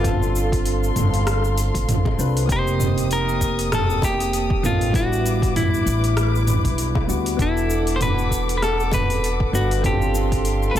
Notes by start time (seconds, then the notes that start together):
Already playing: G1 F4 A4
0.03 C4 D4 F4 F5 C6, kick, mid tom, open hi-hat, shaker
0.07 A4
0.23 shaker
0.36 shaker
0.52 kick, open hi-hat, shaker
0.66 open hi-hat, shaker
0.84 shaker
0.96 G1, mid tom, open hi-hat, shaker
1.14 open hi-hat, shaker
1.27 cross-stick, open hi-hat, shaker
1.44 shaker
1.58 open hi-hat, shaker
1.74 A1, kick, open hi-hat, shaker
1.89 mid tom, open hi-hat, shaker
2.05 kick, high bongo
2.19 C2 C4 D4 F4 B4, shaker
2.37 open hi-hat, shaker
2.47 F1 A#3 C4 D#4 D#6, kick, open hi-hat, shaker
2.52 G4 C5
2.67 shaker
2.80 mid tom, shaker
2.98 open hi-hat, shaker
3.11 A#4, open hi-hat, shaker
3.29 shaker
3.41 kick, open hi-hat, shaker
3.59 open hi-hat, shaker
3.72 A4, cross-stick, mid tom, open hi-hat, high bongo, shaker
3.90 shaker
4.02 G4, kick, open hi-hat, high bongo, shaker
4.20 open hi-hat, shaker
4.33 open hi-hat, shaker
4.50 kick
4.63 A1 A#3 C4 D#4 F4 A4, mid tom, shaker
4.81 open hi-hat, shaker
4.92 G3 B3 D4 F#4 B4 D6, kick, open hi-hat, shaker
4.97 E4
5.13 shaker
5.26 open hi-hat, shaker
5.42 kick, open hi-hat, shaker
5.56 E4, mid tom, open hi-hat, shaker
5.74 shaker
5.86 A1, open hi-hat, shaker
6.04 open hi-hat, shaker
6.17 cross-stick, open hi-hat, shaker
6.35 shaker
6.47 mid tom, open hi-hat, shaker
6.64 B1, kick, open hi-hat, shaker
6.78 open hi-hat, shaker
6.95 kick, high bongo
7.07 D2 G3 B3 D4 F#4, shaker
7.26 open hi-hat, shaker
7.37 E1 B3 D4 F#4 A4 F#5 D6, kick, open hi-hat, shaker
7.41 E4 A4
7.57 shaker
7.70 shaker
7.87 open hi-hat, shaker
7.96 C5
8.01 B4, mid tom, open hi-hat, shaker
8.19 shaker
8.31 kick, open hi-hat, shaker
8.49 open hi-hat, shaker
8.57 B4
8.62 A4, cross-stick, open hi-hat, high bongo, shaker
8.80 shaker
8.91 B4, kick, mid tom, open hi-hat, high bongo, shaker
9.10 open hi-hat, shaker
9.24 open hi-hat, shaker
9.40 kick
9.52 G1 B3 D4 F#4 B4, shaker
9.71 open hi-hat, shaker
9.82 C4 D4 F4 G4 F5 C6, kick, mid tom, open hi-hat, shaker
9.86 A4
10.02 shaker
10.15 shaker
10.32 kick, open hi-hat, shaker
10.45 open hi-hat, shaker
10.63 shaker
10.71 G1 B4
10.76 mid tom, open hi-hat, shaker